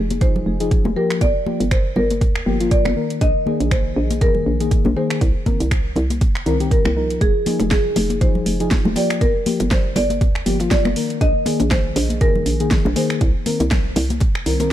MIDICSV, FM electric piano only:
0, 0, Header, 1, 2, 480
1, 0, Start_track
1, 0, Tempo, 500000
1, 1164, Time_signature, 4, 2, 24, 8
1, 14137, End_track
2, 0, Start_track
2, 0, Title_t, "FM electric piano"
2, 0, Program_c, 0, 5
2, 0, Note_on_c, 0, 53, 80
2, 0, Note_on_c, 0, 63, 74
2, 0, Note_on_c, 0, 68, 90
2, 177, Note_off_c, 0, 53, 0
2, 180, Note_off_c, 0, 63, 0
2, 183, Note_off_c, 0, 68, 0
2, 201, Note_on_c, 0, 53, 85
2, 204, Note_on_c, 0, 63, 81
2, 207, Note_on_c, 0, 68, 96
2, 546, Note_off_c, 0, 53, 0
2, 547, Note_off_c, 0, 63, 0
2, 549, Note_off_c, 0, 68, 0
2, 578, Note_on_c, 0, 53, 84
2, 580, Note_on_c, 0, 63, 80
2, 583, Note_on_c, 0, 68, 96
2, 839, Note_off_c, 0, 53, 0
2, 841, Note_off_c, 0, 63, 0
2, 842, Note_off_c, 0, 68, 0
2, 922, Note_on_c, 0, 53, 90
2, 924, Note_on_c, 0, 58, 84
2, 928, Note_on_c, 0, 67, 96
2, 1190, Note_off_c, 0, 53, 0
2, 1191, Note_off_c, 0, 58, 0
2, 1193, Note_off_c, 0, 67, 0
2, 1402, Note_on_c, 0, 53, 69
2, 1405, Note_on_c, 0, 58, 62
2, 1408, Note_on_c, 0, 67, 77
2, 1578, Note_off_c, 0, 53, 0
2, 1579, Note_off_c, 0, 58, 0
2, 1581, Note_off_c, 0, 67, 0
2, 2362, Note_on_c, 0, 53, 87
2, 2365, Note_on_c, 0, 58, 84
2, 2368, Note_on_c, 0, 67, 97
2, 2467, Note_off_c, 0, 53, 0
2, 2468, Note_off_c, 0, 58, 0
2, 2469, Note_off_c, 0, 67, 0
2, 2497, Note_on_c, 0, 53, 86
2, 2500, Note_on_c, 0, 58, 82
2, 2503, Note_on_c, 0, 65, 95
2, 2759, Note_off_c, 0, 53, 0
2, 2760, Note_off_c, 0, 58, 0
2, 2762, Note_off_c, 0, 65, 0
2, 2842, Note_on_c, 0, 51, 70
2, 2845, Note_on_c, 0, 58, 63
2, 2848, Note_on_c, 0, 70, 78
2, 3298, Note_off_c, 0, 51, 0
2, 3300, Note_off_c, 0, 58, 0
2, 3301, Note_off_c, 0, 70, 0
2, 3319, Note_on_c, 0, 51, 85
2, 3325, Note_on_c, 0, 58, 75
2, 3331, Note_on_c, 0, 68, 92
2, 4017, Note_off_c, 0, 51, 0
2, 4020, Note_off_c, 0, 58, 0
2, 4023, Note_off_c, 0, 68, 0
2, 4042, Note_on_c, 0, 51, 90
2, 4045, Note_on_c, 0, 58, 82
2, 4048, Note_on_c, 0, 68, 96
2, 4387, Note_off_c, 0, 51, 0
2, 4388, Note_off_c, 0, 58, 0
2, 4389, Note_off_c, 0, 68, 0
2, 4418, Note_on_c, 0, 51, 88
2, 4421, Note_on_c, 0, 58, 81
2, 4424, Note_on_c, 0, 68, 94
2, 4680, Note_off_c, 0, 51, 0
2, 4681, Note_off_c, 0, 58, 0
2, 4682, Note_off_c, 0, 68, 0
2, 4763, Note_on_c, 0, 51, 88
2, 4766, Note_on_c, 0, 58, 85
2, 4769, Note_on_c, 0, 68, 103
2, 4991, Note_off_c, 0, 51, 0
2, 4993, Note_off_c, 0, 58, 0
2, 4994, Note_off_c, 0, 68, 0
2, 5242, Note_on_c, 0, 51, 67
2, 5246, Note_on_c, 0, 60, 65
2, 5248, Note_on_c, 0, 70, 73
2, 5418, Note_off_c, 0, 51, 0
2, 5419, Note_off_c, 0, 60, 0
2, 5421, Note_off_c, 0, 70, 0
2, 6202, Note_on_c, 0, 51, 93
2, 6205, Note_on_c, 0, 60, 81
2, 6208, Note_on_c, 0, 70, 100
2, 6306, Note_off_c, 0, 51, 0
2, 6308, Note_off_c, 0, 60, 0
2, 6309, Note_off_c, 0, 70, 0
2, 6337, Note_on_c, 0, 51, 87
2, 6339, Note_on_c, 0, 60, 79
2, 6343, Note_on_c, 0, 67, 93
2, 6599, Note_off_c, 0, 51, 0
2, 6600, Note_off_c, 0, 60, 0
2, 6602, Note_off_c, 0, 67, 0
2, 6682, Note_on_c, 0, 53, 69
2, 6685, Note_on_c, 0, 63, 63
2, 6688, Note_on_c, 0, 70, 74
2, 7139, Note_off_c, 0, 53, 0
2, 7140, Note_off_c, 0, 63, 0
2, 7141, Note_off_c, 0, 70, 0
2, 7158, Note_on_c, 0, 53, 82
2, 7164, Note_on_c, 0, 63, 78
2, 7170, Note_on_c, 0, 68, 92
2, 7856, Note_off_c, 0, 53, 0
2, 7859, Note_off_c, 0, 63, 0
2, 7862, Note_off_c, 0, 68, 0
2, 7882, Note_on_c, 0, 53, 90
2, 7884, Note_on_c, 0, 63, 84
2, 7887, Note_on_c, 0, 68, 98
2, 8226, Note_off_c, 0, 53, 0
2, 8228, Note_off_c, 0, 63, 0
2, 8229, Note_off_c, 0, 68, 0
2, 8256, Note_on_c, 0, 53, 92
2, 8259, Note_on_c, 0, 63, 80
2, 8262, Note_on_c, 0, 68, 101
2, 8518, Note_off_c, 0, 53, 0
2, 8520, Note_off_c, 0, 63, 0
2, 8521, Note_off_c, 0, 68, 0
2, 8601, Note_on_c, 0, 53, 93
2, 8604, Note_on_c, 0, 58, 83
2, 8606, Note_on_c, 0, 67, 102
2, 8869, Note_off_c, 0, 53, 0
2, 8870, Note_off_c, 0, 58, 0
2, 8872, Note_off_c, 0, 67, 0
2, 9082, Note_on_c, 0, 53, 70
2, 9084, Note_on_c, 0, 58, 61
2, 9087, Note_on_c, 0, 67, 73
2, 9258, Note_off_c, 0, 53, 0
2, 9259, Note_off_c, 0, 58, 0
2, 9260, Note_off_c, 0, 67, 0
2, 10041, Note_on_c, 0, 53, 91
2, 10043, Note_on_c, 0, 58, 81
2, 10046, Note_on_c, 0, 67, 99
2, 10146, Note_off_c, 0, 53, 0
2, 10147, Note_off_c, 0, 58, 0
2, 10148, Note_off_c, 0, 67, 0
2, 10176, Note_on_c, 0, 53, 90
2, 10179, Note_on_c, 0, 58, 78
2, 10182, Note_on_c, 0, 65, 99
2, 10438, Note_off_c, 0, 53, 0
2, 10440, Note_off_c, 0, 58, 0
2, 10441, Note_off_c, 0, 65, 0
2, 10521, Note_on_c, 0, 51, 71
2, 10524, Note_on_c, 0, 58, 67
2, 10527, Note_on_c, 0, 70, 76
2, 10978, Note_off_c, 0, 51, 0
2, 10979, Note_off_c, 0, 58, 0
2, 10981, Note_off_c, 0, 70, 0
2, 10998, Note_on_c, 0, 51, 83
2, 11004, Note_on_c, 0, 58, 77
2, 11009, Note_on_c, 0, 68, 93
2, 11696, Note_off_c, 0, 51, 0
2, 11699, Note_off_c, 0, 58, 0
2, 11702, Note_off_c, 0, 68, 0
2, 11720, Note_on_c, 0, 51, 89
2, 11723, Note_on_c, 0, 58, 83
2, 11726, Note_on_c, 0, 68, 101
2, 12065, Note_off_c, 0, 51, 0
2, 12067, Note_off_c, 0, 58, 0
2, 12068, Note_off_c, 0, 68, 0
2, 12095, Note_on_c, 0, 51, 90
2, 12098, Note_on_c, 0, 58, 83
2, 12101, Note_on_c, 0, 68, 97
2, 12358, Note_off_c, 0, 51, 0
2, 12359, Note_off_c, 0, 58, 0
2, 12361, Note_off_c, 0, 68, 0
2, 12440, Note_on_c, 0, 51, 93
2, 12443, Note_on_c, 0, 58, 86
2, 12446, Note_on_c, 0, 68, 103
2, 12670, Note_off_c, 0, 51, 0
2, 12672, Note_off_c, 0, 58, 0
2, 12673, Note_off_c, 0, 68, 0
2, 12921, Note_on_c, 0, 51, 69
2, 12924, Note_on_c, 0, 60, 65
2, 12926, Note_on_c, 0, 70, 80
2, 13097, Note_off_c, 0, 51, 0
2, 13099, Note_off_c, 0, 60, 0
2, 13100, Note_off_c, 0, 70, 0
2, 13881, Note_on_c, 0, 51, 70
2, 13884, Note_on_c, 0, 60, 64
2, 13887, Note_on_c, 0, 70, 78
2, 13998, Note_off_c, 0, 51, 0
2, 13999, Note_off_c, 0, 60, 0
2, 14001, Note_off_c, 0, 70, 0
2, 14016, Note_on_c, 0, 51, 87
2, 14020, Note_on_c, 0, 60, 78
2, 14023, Note_on_c, 0, 70, 95
2, 14137, Note_off_c, 0, 51, 0
2, 14137, Note_off_c, 0, 60, 0
2, 14137, Note_off_c, 0, 70, 0
2, 14137, End_track
0, 0, End_of_file